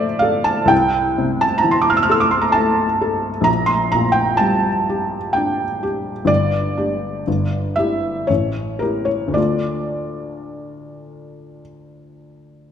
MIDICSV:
0, 0, Header, 1, 2, 480
1, 0, Start_track
1, 0, Key_signature, -1, "minor"
1, 0, Tempo, 925926
1, 370, Time_signature, 3, 2, 24, 8
1, 2282, Tempo, 956938
1, 3722, Tempo, 1018676
1, 4202, Tempo, 1079137
1, 4682, Tempo, 1138520
1, 6094, End_track
2, 0, Start_track
2, 0, Title_t, "Felt piano"
2, 0, Program_c, 0, 0
2, 0, Control_c, 0, 64, 127
2, 0, Note_on_c, 0, 38, 67
2, 0, Note_on_c, 0, 45, 49
2, 0, Note_on_c, 0, 53, 52
2, 0, Note_on_c, 0, 57, 54
2, 0, Note_on_c, 0, 69, 53
2, 0, Note_on_c, 0, 72, 81
2, 0, Note_on_c, 0, 74, 86
2, 0, Note_on_c, 0, 76, 87
2, 99, Note_on_c, 0, 77, 85
2, 114, Note_off_c, 0, 74, 0
2, 116, Note_off_c, 0, 69, 0
2, 116, Note_on_c, 0, 69, 55
2, 230, Note_on_c, 0, 81, 86
2, 236, Note_off_c, 0, 77, 0
2, 271, Note_off_c, 0, 57, 0
2, 337, Note_off_c, 0, 38, 0
2, 339, Note_on_c, 0, 36, 67
2, 352, Note_on_c, 0, 79, 90
2, 361, Note_off_c, 0, 81, 0
2, 365, Note_off_c, 0, 69, 0
2, 379, Control_c, 0, 64, 0
2, 382, Note_off_c, 0, 53, 0
2, 383, Note_off_c, 0, 45, 0
2, 384, Note_off_c, 0, 72, 0
2, 384, Note_off_c, 0, 76, 0
2, 447, Control_c, 0, 64, 127
2, 613, Note_on_c, 0, 48, 48
2, 732, Note_on_c, 0, 81, 86
2, 739, Note_off_c, 0, 79, 0
2, 819, Note_off_c, 0, 81, 0
2, 819, Note_on_c, 0, 82, 85
2, 850, Note_on_c, 0, 52, 52
2, 886, Note_off_c, 0, 82, 0
2, 888, Note_on_c, 0, 84, 70
2, 941, Note_on_c, 0, 86, 66
2, 942, Note_off_c, 0, 84, 0
2, 984, Note_on_c, 0, 89, 71
2, 988, Note_off_c, 0, 48, 0
2, 988, Note_off_c, 0, 86, 0
2, 1020, Note_on_c, 0, 88, 69
2, 1027, Note_off_c, 0, 89, 0
2, 1051, Note_on_c, 0, 89, 72
2, 1065, Note_off_c, 0, 88, 0
2, 1087, Note_on_c, 0, 69, 52
2, 1096, Note_on_c, 0, 88, 69
2, 1102, Note_off_c, 0, 89, 0
2, 1143, Note_on_c, 0, 86, 72
2, 1150, Note_off_c, 0, 88, 0
2, 1198, Note_on_c, 0, 84, 67
2, 1201, Note_off_c, 0, 86, 0
2, 1229, Note_off_c, 0, 52, 0
2, 1252, Note_on_c, 0, 82, 67
2, 1258, Note_off_c, 0, 84, 0
2, 1307, Note_on_c, 0, 81, 87
2, 1315, Note_off_c, 0, 82, 0
2, 1322, Note_on_c, 0, 57, 53
2, 1468, Note_off_c, 0, 69, 0
2, 1563, Note_on_c, 0, 69, 52
2, 1707, Note_off_c, 0, 57, 0
2, 1766, Note_off_c, 0, 36, 0
2, 1768, Note_on_c, 0, 34, 60
2, 1783, Note_on_c, 0, 82, 91
2, 1795, Note_off_c, 0, 81, 0
2, 1802, Note_off_c, 0, 69, 0
2, 1811, Control_c, 0, 64, 0
2, 1894, Control_c, 0, 64, 127
2, 1898, Note_on_c, 0, 84, 84
2, 1912, Note_off_c, 0, 82, 0
2, 2029, Note_off_c, 0, 84, 0
2, 2030, Note_on_c, 0, 82, 86
2, 2046, Note_on_c, 0, 46, 45
2, 2136, Note_on_c, 0, 79, 81
2, 2155, Note_off_c, 0, 82, 0
2, 2266, Note_on_c, 0, 81, 87
2, 2269, Note_off_c, 0, 79, 0
2, 2285, Note_on_c, 0, 55, 45
2, 2426, Note_off_c, 0, 46, 0
2, 2528, Note_on_c, 0, 67, 48
2, 2664, Note_off_c, 0, 55, 0
2, 2747, Note_on_c, 0, 79, 76
2, 2750, Note_off_c, 0, 81, 0
2, 2764, Note_on_c, 0, 62, 48
2, 2905, Note_off_c, 0, 67, 0
2, 2989, Note_off_c, 0, 79, 0
2, 2998, Note_on_c, 0, 67, 45
2, 3139, Note_off_c, 0, 62, 0
2, 3194, Note_off_c, 0, 34, 0
2, 3208, Note_on_c, 0, 31, 53
2, 3220, Note_on_c, 0, 74, 89
2, 3233, Note_off_c, 0, 67, 0
2, 3238, Control_c, 0, 64, 0
2, 3330, Control_c, 0, 64, 127
2, 3472, Note_on_c, 0, 62, 40
2, 3474, Note_on_c, 0, 67, 45
2, 3694, Note_off_c, 0, 31, 0
2, 3700, Note_off_c, 0, 62, 0
2, 3701, Note_off_c, 0, 67, 0
2, 3722, Note_on_c, 0, 31, 50
2, 3728, Control_c, 0, 64, 0
2, 3799, Control_c, 0, 64, 127
2, 3950, Note_on_c, 0, 76, 74
2, 3954, Note_off_c, 0, 74, 0
2, 3964, Note_on_c, 0, 64, 35
2, 3966, Note_on_c, 0, 67, 41
2, 4185, Note_off_c, 0, 64, 0
2, 4186, Note_off_c, 0, 67, 0
2, 4187, Note_off_c, 0, 31, 0
2, 4193, Note_on_c, 0, 73, 69
2, 4197, Note_off_c, 0, 76, 0
2, 4205, Note_on_c, 0, 33, 48
2, 4208, Control_c, 0, 64, 0
2, 4295, Control_c, 0, 64, 127
2, 4424, Note_on_c, 0, 70, 59
2, 4432, Note_off_c, 0, 73, 0
2, 4436, Note_on_c, 0, 67, 38
2, 4437, Note_on_c, 0, 64, 35
2, 4540, Note_on_c, 0, 73, 63
2, 4551, Note_off_c, 0, 70, 0
2, 4641, Note_on_c, 0, 38, 44
2, 4664, Note_off_c, 0, 64, 0
2, 4664, Note_off_c, 0, 67, 0
2, 4666, Note_on_c, 0, 57, 32
2, 4668, Note_on_c, 0, 74, 65
2, 4669, Note_off_c, 0, 33, 0
2, 4673, Note_off_c, 0, 73, 0
2, 4673, Note_on_c, 0, 62, 34
2, 4680, Note_on_c, 0, 65, 34
2, 4688, Control_c, 0, 64, 0
2, 4765, Control_c, 0, 64, 127
2, 5628, Note_off_c, 0, 74, 0
2, 6088, Note_off_c, 0, 38, 0
2, 6094, Note_off_c, 0, 57, 0
2, 6094, Note_off_c, 0, 62, 0
2, 6094, Note_off_c, 0, 65, 0
2, 6094, End_track
0, 0, End_of_file